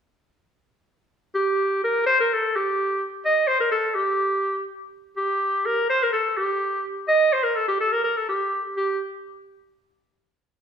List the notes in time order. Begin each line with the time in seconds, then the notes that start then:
1.35 G4
1.84 A#4
2.06 C5
2.20 A#4
2.33 A4
2.56 G4
3.25 D#5
3.48 C5
3.60 A#4
3.72 A4
3.95 G4
5.17 G4
5.66 A#4
5.90 C5
6.03 A#4
6.13 A4
6.38 G4
7.08 D#5
7.33 C5
7.44 A#4
7.56 A4
7.68 G4
7.80 A4
7.92 A#4
8.04 A#4
8.17 A4
8.29 G4
8.77 G4